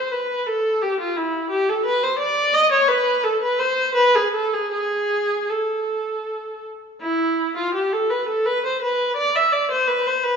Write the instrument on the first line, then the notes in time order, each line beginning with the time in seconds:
viola
Already playing: C5
0.12 B4
0.47 A4
0.82 G4
1.00 F4
1.17 E4
1.50 G4
1.69 A4
1.85 B4
2.03 C5
2.19 D5
2.54 D#5
2.72 C#5
2.88 B4
3.24 A4
3.42 B4
3.59 C5
3.95 B4
4.15 G#4
4.33 A4
4.53 G#4
4.72 G#4
5.49 A4
7.01 E4
7.57 F4
7.74 G4
7.93 A4
8.10 B4
8.29 A4
8.46 B4
8.66 C5
8.82 B4
9.16 D5
9.36 E5
9.52 D5
9.71 C5
9.88 B4
10.07 C5
10.23 B4